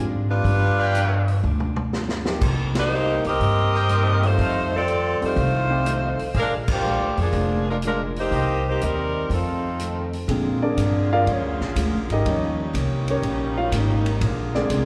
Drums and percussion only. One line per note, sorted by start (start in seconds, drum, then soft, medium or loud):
0.45 kick soft
0.45 open hi-hat soft
0.95 closed hi-hat medium
1.28 open hi-hat soft
1.44 mid tom soft
1.60 mid tom medium
1.76 mid tom medium
1.93 snare medium
2.09 snare medium
2.25 snare medium
2.41 kick medium
2.41 crash medium
2.75 snare medium
2.75 ride medium
3.24 open hi-hat soft
3.40 kick soft
3.40 open hi-hat soft
3.89 closed hi-hat medium
4.23 open hi-hat soft
4.38 kick soft
4.38 open hi-hat soft
4.88 closed hi-hat medium
5.22 open hi-hat soft
5.37 kick soft
5.37 open hi-hat soft
5.86 closed hi-hat medium
6.19 open hi-hat soft
6.34 kick soft
6.34 open hi-hat soft
6.68 kick medium
6.68 crash medium
7.17 open hi-hat soft
7.32 kick soft
7.32 open hi-hat soft
7.82 closed hi-hat medium
8.16 open hi-hat soft
8.31 kick soft
8.31 open hi-hat soft
8.81 closed hi-hat medium
9.30 kick soft
9.30 open hi-hat soft
9.79 closed hi-hat medium
10.13 open hi-hat soft
10.28 kick soft
10.28 ride medium
10.77 kick soft
10.77 hi-hat pedal medium
10.77 ride medium
11.27 kick soft
11.27 ride soft
11.61 snare soft
11.76 kick soft
11.76 hi-hat pedal medium
11.76 ride medium
12.10 ride soft
12.25 kick soft
12.25 ride medium
12.74 kick soft
12.74 hi-hat pedal medium
12.74 ride medium
13.08 ride soft
13.23 kick soft
13.23 ride medium
13.72 kick soft
13.72 hi-hat pedal medium
13.72 ride medium
14.06 ride soft
14.21 kick soft
14.21 ride medium
14.54 snare soft
14.70 kick soft
14.70 hi-hat pedal medium
14.70 ride medium